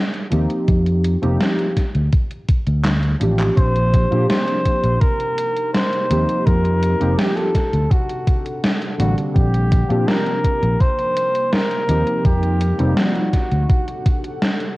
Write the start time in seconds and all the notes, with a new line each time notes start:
0.14 closed hi-hat
0.30 D#2 F3 A#3 C4 D#4 G4, closed hi-hat
0.50 closed hi-hat
0.68 F2, kick, closed hi-hat
0.86 closed hi-hat
1.04 closed hi-hat
1.22 F1 F3 A#3 C4 D#4 G4, closed hi-hat
1.40 snare, closed hi-hat
1.59 closed hi-hat
1.77 kick, snare, closed hi-hat
1.95 D2, closed hi-hat
2.13 kick, closed hi-hat
2.31 closed hi-hat
2.49 kick, closed hi-hat
2.67 D2, closed hi-hat
2.85 snare, clap, closed hi-hat
3.03 closed hi-hat
3.20 A1 F3 A#3 C4 D4 G4, closed hi-hat
3.39 clap, closed hi-hat
3.57 A#1 C3 F3 A#3 D4 G4 C5, kick, closed hi-hat
3.75 closed hi-hat
3.93 kick, closed hi-hat
4.10 A#2 F3 A#3 C4 D4 G4, closed hi-hat
4.29 C5, snare, closed hi-hat
4.48 closed hi-hat
4.66 kick, closed hi-hat
4.84 A#1, closed hi-hat
5.01 G3 D#4 A#4, kick, closed hi-hat
5.20 closed hi-hat
5.38 closed hi-hat
5.56 closed hi-hat
5.73 C5, snare, closed hi-hat
5.92 closed hi-hat
6.09 D#2 F3 A#3 C4 D#4 G4, closed hi-hat
6.28 closed hi-hat
6.46 F2 F3 A#4, kick, closed hi-hat
6.65 closed hi-hat
6.82 closed hi-hat
7.00 F1 F3 A#3 C4 D#4 G4, closed hi-hat
7.18 G4, snare, closed hi-hat
7.37 A4, closed hi-hat
7.55 D4 A4 F#5, kick, snare, closed hi-hat
7.73 D2, closed hi-hat
7.91 F#4, kick, closed hi-hat
8.09 closed hi-hat
8.27 kick, closed hi-hat
8.46 closed hi-hat
8.64 snare, closed hi-hat
8.82 closed hi-hat
8.98 A1 D3 G3 A#3 C4 D4 F#4, closed hi-hat
9.18 closed hi-hat
9.35 A#1 F3 A#3 G4, kick, closed hi-hat
9.54 closed hi-hat
9.72 kick, closed hi-hat
9.88 A#2 F3 A#3 C4 D4 G4, closed hi-hat
10.08 A#4, snare, closed hi-hat
10.26 closed hi-hat
10.44 kick, closed hi-hat
10.62 A#1, closed hi-hat
10.80 G3 A#3 D#4 C5, kick, closed hi-hat
10.98 closed hi-hat
11.16 closed hi-hat
11.35 closed hi-hat
11.53 A#4, snare, closed hi-hat
11.71 closed hi-hat
11.87 D#2 F3 A#3 C4 D#4 G4, closed hi-hat
12.07 closed hi-hat
12.25 F2 F3 G4, kick, closed hi-hat
12.43 closed hi-hat
12.61 closed hi-hat
12.79 F1 F3 G3 A#3 C4 D#4, closed hi-hat
12.97 F#4, snare, closed hi-hat
13.16 closed hi-hat
13.33 C3 D4 A4 F#5, kick, snare, closed hi-hat
13.52 D2, closed hi-hat
13.69 kick, closed hi-hat
13.88 closed hi-hat
14.06 kick, closed hi-hat
14.24 closed hi-hat
14.42 snare, closed hi-hat
14.60 closed hi-hat